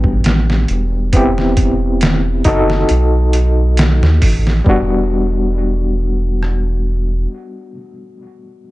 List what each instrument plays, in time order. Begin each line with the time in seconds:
Already playing: sub bass A1, reed electric piano G3 B3 D4 G4
0.04 kick
0.24 snare, closed hi-hat
0.50 snare
0.68 sub bass E1, closed hi-hat
1.13 reed electric piano B3 C4 E4 G4, kick, closed hi-hat
1.38 snare
1.57 kick, closed hi-hat
2.01 snare, closed hi-hat
2.44 sub bass F#1, reed electric piano D#4 F#4 A4, kick, closed hi-hat
2.49 reed electric piano D#5
2.70 snare
2.89 sub bass B1, closed hi-hat
3.33 closed hi-hat
3.77 snare, closed hi-hat
4.02 sub bass D#2, snare
4.22 sub bass A1, kick, open hi-hat
4.47 snare
4.64 sub bass E1, reed electric piano G3 B3 D4, kick
4.70 reed electric piano F#4
6.43 cross-stick